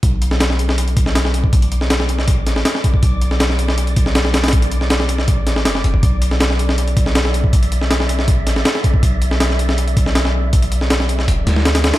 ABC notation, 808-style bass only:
X:1
M:4/4
L:1/8
Q:1/4=160
K:Bm
V:1 name="808-style bass" clef=bass
B,,,4- B,,, B,,,3- | B,,,4- B,,, A,,, z2 | B,,,4- B,,, B,,,3- | B,,,4- B,,, A,,, F,,, A,,, |
B,,,4- B,,, B,,,3- | B,,,4- B,,, A,,, z2 | B,,,4- B,,, B,,,3- | B,,,4- B,,, D,,2 z |]